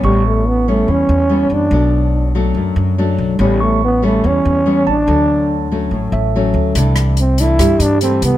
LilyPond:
<<
  \new Staff \with { instrumentName = "Tine electric piano" } { \time 4/4 \key a \mixolydian \tempo 4 = 143 cis'''2 r2 | r1 | r8 cis'''2 r4 a''8~ | a''8 r2 e''4.~ |
e''8 r4. g'2 | }
  \new Staff \with { instrumentName = "Trombone" } { \time 4/4 \key a \mixolydian g8 a8 b8 a8 cis'4. d'8~ | d'4. r2 r8 | g8 a8 b8 a8 cis'4. d'8~ | d'4. r2 r8 |
r4 c'8 e'4 d'8 c'8 b8 | }
  \new Staff \with { instrumentName = "Nylon-string guitar" } { \time 4/4 \key a \mixolydian << { <g b cis'>4 r8 <g b cis'>4. <g b cis'>4 | <fis a d'>4. <fis a d'>4. <fis a d'>4 | <g b cis'>4 r8 <g b cis'>4. <g b cis'>8 r8 | <fis a>4. <fis a cis'>4. <fis a cis'>4 |
<e a d'>4 r8 <e a d'>4. <e a d'>4 | } \\ { a,2 e2 | b,2 fis,2 | a,2 e2 | d2 a,2 |
c2 g,2 | } >> }
  \new Staff \with { instrumentName = "Upright bass" } { \clef bass \time 4/4 \key a \mixolydian a,,2 e,8 e,4 fis,8 | b,,2 fis,8 fis,4 b,,8 | a,,2 e,8 e,4 a,,8 | d,2 a,,8 a,,4 d,8 |
c,2 g,8 g,4 c,8 | }
  \new DrumStaff \with { instrumentName = "Drums" } \drummode { \time 4/4 r4 r4 r4 r4 | r4 r4 r4 r4 | r4 r4 r4 r4 | r4 r4 r4 r4 |
<hh bd>8 <hh ss>8 hh8 <hh bd>8 <hh bd ss>8 hh8 hh8 <hh bd>8 | }
>>